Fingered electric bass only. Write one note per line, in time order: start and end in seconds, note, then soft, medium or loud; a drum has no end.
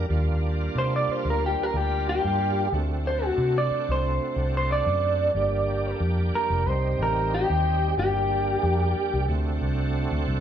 0.10 0.68 D#2 medium
0.75 1.04 C3 medium
1.08 muted fingered electric bass stroke soft
1.25 1.54 D2 medium
1.74 2.18 D2 medium
2.24 2.67 G2 medium
2.72 3.30 D2 medium
3.38 3.67 C3 medium
3.71 muted fingered electric bass stroke soft
3.89 4.18 C2 medium
4.36 4.81 C2 medium
4.86 5.29 F#2 medium
5.35 5.93 G1 loud
6.00 6.29 F2 medium
6.33 muted fingered electric bass stroke soft
6.50 6.64 F1 medium
6.66 6.95 C2 loud
6.99 7.43 A1 medium
7.50 7.92 D#2 medium
7.98 8.55 G1 medium
8.63 8.92 F2 medium
8.96 muted fingered electric bass stroke soft
9.13 9.27 C2 loud
9.29 9.58 D2 loud
9.61 10.06 C2 medium
10.11 10.25 D2 medium
10.27 10.40 C2 medium